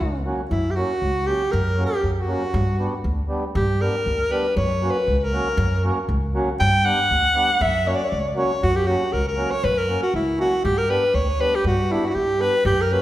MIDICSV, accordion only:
0, 0, Header, 1, 2, 480
1, 0, Start_track
1, 0, Tempo, 505902
1, 484, Time_signature, 2, 2, 24, 8
1, 12352, End_track
2, 0, Start_track
2, 0, Title_t, "Accordion"
2, 0, Program_c, 0, 21
2, 233, Note_on_c, 0, 54, 69
2, 240, Note_on_c, 0, 58, 51
2, 248, Note_on_c, 0, 61, 61
2, 253, Note_on_c, 0, 66, 71
2, 380, Note_off_c, 0, 54, 0
2, 384, Note_off_c, 0, 58, 0
2, 388, Note_off_c, 0, 61, 0
2, 390, Note_off_c, 0, 66, 0
2, 722, Note_on_c, 0, 54, 53
2, 727, Note_on_c, 0, 58, 50
2, 733, Note_on_c, 0, 61, 57
2, 738, Note_on_c, 0, 66, 57
2, 864, Note_off_c, 0, 54, 0
2, 867, Note_off_c, 0, 58, 0
2, 870, Note_off_c, 0, 61, 0
2, 873, Note_off_c, 0, 66, 0
2, 1195, Note_on_c, 0, 54, 51
2, 1200, Note_on_c, 0, 58, 46
2, 1205, Note_on_c, 0, 61, 51
2, 1214, Note_on_c, 0, 66, 49
2, 1341, Note_off_c, 0, 54, 0
2, 1344, Note_off_c, 0, 58, 0
2, 1346, Note_off_c, 0, 61, 0
2, 1351, Note_off_c, 0, 66, 0
2, 1676, Note_on_c, 0, 54, 68
2, 1682, Note_on_c, 0, 58, 57
2, 1689, Note_on_c, 0, 61, 52
2, 1696, Note_on_c, 0, 66, 58
2, 1822, Note_off_c, 0, 54, 0
2, 1825, Note_off_c, 0, 58, 0
2, 1828, Note_off_c, 0, 61, 0
2, 1832, Note_off_c, 0, 66, 0
2, 2156, Note_on_c, 0, 54, 50
2, 2163, Note_on_c, 0, 58, 60
2, 2166, Note_on_c, 0, 61, 58
2, 2176, Note_on_c, 0, 66, 74
2, 2302, Note_off_c, 0, 54, 0
2, 2306, Note_off_c, 0, 58, 0
2, 2307, Note_off_c, 0, 61, 0
2, 2312, Note_off_c, 0, 66, 0
2, 2641, Note_on_c, 0, 55, 63
2, 2644, Note_on_c, 0, 59, 59
2, 2650, Note_on_c, 0, 62, 62
2, 2654, Note_on_c, 0, 67, 69
2, 2785, Note_off_c, 0, 55, 0
2, 2787, Note_off_c, 0, 59, 0
2, 2790, Note_off_c, 0, 62, 0
2, 2792, Note_off_c, 0, 67, 0
2, 3112, Note_on_c, 0, 55, 69
2, 3117, Note_on_c, 0, 59, 71
2, 3126, Note_on_c, 0, 62, 65
2, 3133, Note_on_c, 0, 67, 70
2, 3262, Note_off_c, 0, 55, 0
2, 3265, Note_off_c, 0, 59, 0
2, 3269, Note_off_c, 0, 62, 0
2, 3273, Note_off_c, 0, 67, 0
2, 3607, Note_on_c, 0, 55, 64
2, 3611, Note_on_c, 0, 59, 58
2, 3613, Note_on_c, 0, 62, 61
2, 3621, Note_on_c, 0, 67, 66
2, 3750, Note_off_c, 0, 55, 0
2, 3752, Note_off_c, 0, 59, 0
2, 3753, Note_off_c, 0, 62, 0
2, 3757, Note_off_c, 0, 67, 0
2, 4082, Note_on_c, 0, 55, 57
2, 4091, Note_on_c, 0, 59, 42
2, 4097, Note_on_c, 0, 62, 42
2, 4101, Note_on_c, 0, 67, 73
2, 4228, Note_off_c, 0, 55, 0
2, 4233, Note_off_c, 0, 59, 0
2, 4236, Note_off_c, 0, 62, 0
2, 4238, Note_off_c, 0, 67, 0
2, 4568, Note_on_c, 0, 54, 69
2, 4576, Note_on_c, 0, 58, 58
2, 4577, Note_on_c, 0, 61, 51
2, 4586, Note_on_c, 0, 66, 73
2, 4712, Note_off_c, 0, 54, 0
2, 4717, Note_off_c, 0, 58, 0
2, 4717, Note_off_c, 0, 61, 0
2, 4722, Note_off_c, 0, 66, 0
2, 5048, Note_on_c, 0, 54, 51
2, 5051, Note_on_c, 0, 58, 53
2, 5057, Note_on_c, 0, 61, 59
2, 5064, Note_on_c, 0, 66, 64
2, 5193, Note_off_c, 0, 54, 0
2, 5195, Note_off_c, 0, 58, 0
2, 5198, Note_off_c, 0, 61, 0
2, 5201, Note_off_c, 0, 66, 0
2, 5531, Note_on_c, 0, 54, 62
2, 5538, Note_on_c, 0, 58, 68
2, 5542, Note_on_c, 0, 61, 68
2, 5546, Note_on_c, 0, 66, 73
2, 5676, Note_off_c, 0, 54, 0
2, 5679, Note_off_c, 0, 58, 0
2, 5681, Note_off_c, 0, 61, 0
2, 5683, Note_off_c, 0, 66, 0
2, 6016, Note_on_c, 0, 54, 67
2, 6021, Note_on_c, 0, 58, 66
2, 6024, Note_on_c, 0, 61, 76
2, 6031, Note_on_c, 0, 66, 89
2, 6159, Note_off_c, 0, 54, 0
2, 6161, Note_off_c, 0, 58, 0
2, 6163, Note_off_c, 0, 61, 0
2, 6166, Note_off_c, 0, 66, 0
2, 6484, Note_on_c, 0, 55, 64
2, 6495, Note_on_c, 0, 59, 65
2, 6498, Note_on_c, 0, 62, 57
2, 6504, Note_on_c, 0, 67, 69
2, 6633, Note_off_c, 0, 55, 0
2, 6639, Note_off_c, 0, 59, 0
2, 6641, Note_off_c, 0, 62, 0
2, 6644, Note_off_c, 0, 67, 0
2, 6965, Note_on_c, 0, 55, 65
2, 6967, Note_on_c, 0, 59, 63
2, 6973, Note_on_c, 0, 62, 53
2, 6979, Note_on_c, 0, 67, 74
2, 7114, Note_off_c, 0, 55, 0
2, 7116, Note_off_c, 0, 59, 0
2, 7119, Note_off_c, 0, 62, 0
2, 7122, Note_off_c, 0, 67, 0
2, 7446, Note_on_c, 0, 54, 65
2, 7453, Note_on_c, 0, 58, 66
2, 7455, Note_on_c, 0, 61, 54
2, 7463, Note_on_c, 0, 66, 65
2, 7595, Note_off_c, 0, 54, 0
2, 7599, Note_off_c, 0, 58, 0
2, 7600, Note_off_c, 0, 61, 0
2, 7604, Note_off_c, 0, 66, 0
2, 7925, Note_on_c, 0, 54, 69
2, 7935, Note_on_c, 0, 58, 52
2, 7936, Note_on_c, 0, 61, 56
2, 7942, Note_on_c, 0, 66, 75
2, 8075, Note_off_c, 0, 54, 0
2, 8080, Note_off_c, 0, 58, 0
2, 8081, Note_off_c, 0, 61, 0
2, 8083, Note_off_c, 0, 66, 0
2, 8406, Note_on_c, 0, 54, 68
2, 8415, Note_on_c, 0, 58, 59
2, 8417, Note_on_c, 0, 61, 62
2, 8424, Note_on_c, 0, 66, 70
2, 8555, Note_off_c, 0, 54, 0
2, 8560, Note_off_c, 0, 58, 0
2, 8561, Note_off_c, 0, 61, 0
2, 8565, Note_off_c, 0, 66, 0
2, 8877, Note_on_c, 0, 54, 51
2, 8884, Note_on_c, 0, 58, 53
2, 8891, Note_on_c, 0, 61, 53
2, 8896, Note_on_c, 0, 66, 70
2, 9031, Note_off_c, 0, 54, 0
2, 9034, Note_off_c, 0, 58, 0
2, 9038, Note_off_c, 0, 61, 0
2, 9040, Note_off_c, 0, 66, 0
2, 9368, Note_on_c, 0, 54, 59
2, 9371, Note_on_c, 0, 58, 59
2, 9375, Note_on_c, 0, 61, 55
2, 9382, Note_on_c, 0, 66, 63
2, 9516, Note_off_c, 0, 54, 0
2, 9517, Note_off_c, 0, 58, 0
2, 9519, Note_off_c, 0, 61, 0
2, 9523, Note_off_c, 0, 66, 0
2, 9842, Note_on_c, 0, 54, 58
2, 9847, Note_on_c, 0, 58, 54
2, 9852, Note_on_c, 0, 61, 57
2, 9861, Note_on_c, 0, 66, 59
2, 9992, Note_off_c, 0, 54, 0
2, 9995, Note_off_c, 0, 58, 0
2, 9997, Note_off_c, 0, 61, 0
2, 10002, Note_off_c, 0, 66, 0
2, 10324, Note_on_c, 0, 55, 66
2, 10329, Note_on_c, 0, 59, 63
2, 10337, Note_on_c, 0, 62, 60
2, 10343, Note_on_c, 0, 67, 65
2, 10473, Note_off_c, 0, 55, 0
2, 10475, Note_off_c, 0, 59, 0
2, 10479, Note_off_c, 0, 62, 0
2, 10482, Note_off_c, 0, 67, 0
2, 10803, Note_on_c, 0, 55, 57
2, 10809, Note_on_c, 0, 59, 50
2, 10818, Note_on_c, 0, 62, 54
2, 10823, Note_on_c, 0, 67, 65
2, 10951, Note_off_c, 0, 55, 0
2, 10954, Note_off_c, 0, 59, 0
2, 10959, Note_off_c, 0, 62, 0
2, 10961, Note_off_c, 0, 67, 0
2, 11280, Note_on_c, 0, 55, 56
2, 11287, Note_on_c, 0, 59, 50
2, 11293, Note_on_c, 0, 62, 57
2, 11300, Note_on_c, 0, 67, 69
2, 11428, Note_off_c, 0, 55, 0
2, 11432, Note_off_c, 0, 59, 0
2, 11435, Note_off_c, 0, 62, 0
2, 11438, Note_off_c, 0, 67, 0
2, 11750, Note_on_c, 0, 55, 58
2, 11751, Note_on_c, 0, 59, 47
2, 11760, Note_on_c, 0, 62, 62
2, 11768, Note_on_c, 0, 67, 68
2, 11902, Note_off_c, 0, 55, 0
2, 11903, Note_off_c, 0, 59, 0
2, 11907, Note_off_c, 0, 62, 0
2, 11911, Note_off_c, 0, 67, 0
2, 12236, Note_on_c, 0, 54, 65
2, 12245, Note_on_c, 0, 58, 63
2, 12246, Note_on_c, 0, 61, 60
2, 12254, Note_on_c, 0, 66, 66
2, 12352, Note_off_c, 0, 54, 0
2, 12352, Note_off_c, 0, 58, 0
2, 12352, Note_off_c, 0, 61, 0
2, 12352, Note_off_c, 0, 66, 0
2, 12352, End_track
0, 0, End_of_file